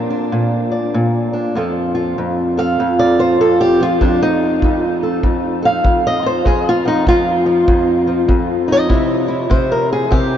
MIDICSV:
0, 0, Header, 1, 3, 480
1, 0, Start_track
1, 0, Tempo, 612245
1, 1224, Time_signature, 4, 2, 24, 8
1, 8134, End_track
2, 0, Start_track
2, 0, Title_t, "Steel-string acoustic guitar"
2, 0, Program_c, 0, 25
2, 0, Note_on_c, 0, 46, 70
2, 0, Note_on_c, 0, 53, 48
2, 0, Note_on_c, 0, 58, 50
2, 82, Note_on_c, 0, 62, 46
2, 244, Note_off_c, 0, 46, 0
2, 253, Note_on_c, 0, 46, 76
2, 561, Note_on_c, 0, 74, 49
2, 731, Note_off_c, 0, 46, 0
2, 740, Note_on_c, 0, 46, 78
2, 1036, Note_off_c, 0, 62, 0
2, 1045, Note_on_c, 0, 62, 48
2, 1201, Note_off_c, 0, 46, 0
2, 1201, Note_off_c, 0, 74, 0
2, 1218, Note_on_c, 0, 41, 70
2, 1223, Note_off_c, 0, 53, 0
2, 1223, Note_off_c, 0, 62, 0
2, 1226, Note_off_c, 0, 58, 0
2, 1226, Note_on_c, 0, 53, 53
2, 1229, Note_on_c, 0, 65, 51
2, 1238, Note_on_c, 0, 69, 49
2, 1524, Note_off_c, 0, 65, 0
2, 1527, Note_on_c, 0, 65, 51
2, 1707, Note_off_c, 0, 41, 0
2, 1710, Note_on_c, 0, 41, 66
2, 2015, Note_off_c, 0, 69, 0
2, 2018, Note_on_c, 0, 69, 49
2, 2028, Note_on_c, 0, 77, 99
2, 2191, Note_off_c, 0, 41, 0
2, 2194, Note_on_c, 0, 41, 77
2, 2344, Note_off_c, 0, 77, 0
2, 2347, Note_on_c, 0, 74, 88
2, 2499, Note_off_c, 0, 65, 0
2, 2502, Note_on_c, 0, 65, 49
2, 2504, Note_off_c, 0, 69, 0
2, 2507, Note_off_c, 0, 74, 0
2, 2507, Note_on_c, 0, 72, 84
2, 2667, Note_off_c, 0, 41, 0
2, 2667, Note_off_c, 0, 72, 0
2, 2671, Note_on_c, 0, 41, 76
2, 2672, Note_on_c, 0, 69, 81
2, 2827, Note_on_c, 0, 67, 97
2, 2829, Note_off_c, 0, 69, 0
2, 2978, Note_off_c, 0, 53, 0
2, 2981, Note_on_c, 0, 53, 51
2, 2988, Note_off_c, 0, 67, 0
2, 2997, Note_off_c, 0, 65, 0
2, 3000, Note_on_c, 0, 65, 96
2, 3145, Note_off_c, 0, 41, 0
2, 3149, Note_on_c, 0, 41, 76
2, 3151, Note_on_c, 0, 62, 84
2, 3154, Note_off_c, 0, 65, 0
2, 3309, Note_off_c, 0, 53, 0
2, 3309, Note_off_c, 0, 62, 0
2, 3312, Note_on_c, 0, 63, 98
2, 3634, Note_off_c, 0, 41, 0
2, 3637, Note_on_c, 0, 41, 73
2, 3791, Note_off_c, 0, 63, 0
2, 3944, Note_on_c, 0, 69, 48
2, 4100, Note_off_c, 0, 41, 0
2, 4103, Note_on_c, 0, 41, 81
2, 4401, Note_off_c, 0, 69, 0
2, 4410, Note_on_c, 0, 69, 46
2, 4432, Note_on_c, 0, 77, 93
2, 4570, Note_off_c, 0, 41, 0
2, 4579, Note_on_c, 0, 41, 77
2, 4750, Note_off_c, 0, 77, 0
2, 4757, Note_on_c, 0, 75, 96
2, 4883, Note_on_c, 0, 65, 50
2, 4908, Note_off_c, 0, 69, 0
2, 4911, Note_on_c, 0, 72, 93
2, 4913, Note_off_c, 0, 75, 0
2, 5044, Note_off_c, 0, 65, 0
2, 5049, Note_off_c, 0, 41, 0
2, 5059, Note_on_c, 0, 41, 78
2, 5067, Note_off_c, 0, 72, 0
2, 5070, Note_on_c, 0, 68, 100
2, 5230, Note_off_c, 0, 68, 0
2, 5244, Note_on_c, 0, 65, 92
2, 5371, Note_on_c, 0, 53, 53
2, 5388, Note_off_c, 0, 65, 0
2, 5391, Note_on_c, 0, 63, 94
2, 5534, Note_off_c, 0, 41, 0
2, 5544, Note_on_c, 0, 41, 72
2, 5550, Note_off_c, 0, 63, 0
2, 5554, Note_on_c, 0, 65, 100
2, 5840, Note_off_c, 0, 53, 0
2, 5849, Note_on_c, 0, 53, 48
2, 6014, Note_off_c, 0, 41, 0
2, 6023, Note_on_c, 0, 41, 77
2, 6320, Note_off_c, 0, 53, 0
2, 6330, Note_on_c, 0, 53, 49
2, 6485, Note_off_c, 0, 41, 0
2, 6494, Note_on_c, 0, 41, 78
2, 6510, Note_off_c, 0, 65, 0
2, 6805, Note_on_c, 0, 63, 49
2, 6839, Note_on_c, 0, 75, 104
2, 6963, Note_off_c, 0, 63, 0
2, 6972, Note_on_c, 0, 48, 76
2, 6976, Note_on_c, 0, 64, 53
2, 6980, Note_off_c, 0, 41, 0
2, 6986, Note_off_c, 0, 53, 0
2, 7267, Note_off_c, 0, 64, 0
2, 7277, Note_on_c, 0, 64, 49
2, 7436, Note_off_c, 0, 48, 0
2, 7446, Note_on_c, 0, 48, 70
2, 7450, Note_off_c, 0, 75, 0
2, 7453, Note_on_c, 0, 72, 95
2, 7618, Note_on_c, 0, 70, 85
2, 7619, Note_off_c, 0, 72, 0
2, 7779, Note_off_c, 0, 70, 0
2, 7782, Note_on_c, 0, 68, 90
2, 7914, Note_off_c, 0, 48, 0
2, 7923, Note_on_c, 0, 48, 71
2, 7932, Note_on_c, 0, 67, 106
2, 7943, Note_off_c, 0, 68, 0
2, 8134, Note_off_c, 0, 48, 0
2, 8134, Note_off_c, 0, 64, 0
2, 8134, Note_off_c, 0, 67, 0
2, 8134, End_track
3, 0, Start_track
3, 0, Title_t, "Drums"
3, 3145, Note_on_c, 9, 36, 68
3, 3223, Note_off_c, 9, 36, 0
3, 3625, Note_on_c, 9, 36, 63
3, 3703, Note_off_c, 9, 36, 0
3, 4104, Note_on_c, 9, 36, 62
3, 4182, Note_off_c, 9, 36, 0
3, 4583, Note_on_c, 9, 36, 73
3, 4662, Note_off_c, 9, 36, 0
3, 5064, Note_on_c, 9, 36, 68
3, 5142, Note_off_c, 9, 36, 0
3, 5541, Note_on_c, 9, 36, 65
3, 5620, Note_off_c, 9, 36, 0
3, 6020, Note_on_c, 9, 36, 70
3, 6099, Note_off_c, 9, 36, 0
3, 6498, Note_on_c, 9, 36, 73
3, 6577, Note_off_c, 9, 36, 0
3, 6977, Note_on_c, 9, 36, 71
3, 7055, Note_off_c, 9, 36, 0
3, 7455, Note_on_c, 9, 36, 69
3, 7533, Note_off_c, 9, 36, 0
3, 7933, Note_on_c, 9, 36, 68
3, 8011, Note_off_c, 9, 36, 0
3, 8134, End_track
0, 0, End_of_file